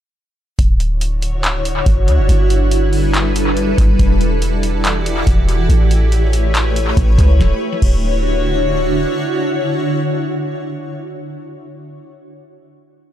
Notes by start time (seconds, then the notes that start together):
0.59 D1 D3 D4 E4 F#4 C#5, kick, closed hi-hat
0.80 closed hi-hat
1.01 closed hi-hat
1.22 closed hi-hat
1.44 clap, closed hi-hat
1.65 closed hi-hat
1.86 F#1, kick, closed hi-hat
2.08 D2, closed hi-hat
2.18 F#1
2.29 G1 G3 A4 B4, closed hi-hat
2.50 closed hi-hat
2.71 closed hi-hat
2.93 open hi-hat
3.14 clap, closed hi-hat
3.36 closed hi-hat
3.57 closed hi-hat
3.78 G1, kick, closed hi-hat
3.99 E1 E3 E4 F#4 G4 D5, kick, closed hi-hat
4.21 closed hi-hat
4.42 closed hi-hat
4.63 closed hi-hat
4.85 clap, closed hi-hat
5.06 closed hi-hat
5.27 E1, kick, closed hi-hat
5.49 closed hi-hat
5.69 A1 A3 B4 C#5, closed hi-hat
5.91 closed hi-hat
6.12 closed hi-hat
6.33 closed hi-hat
6.55 clap, closed hi-hat
6.76 closed hi-hat
6.97 A1, kick, closed hi-hat
7.18 C#2, kick, closed hi-hat
7.40 D1 D3 D4 E4 F#4 C#5, kick, snare
7.82 D1, kick, crash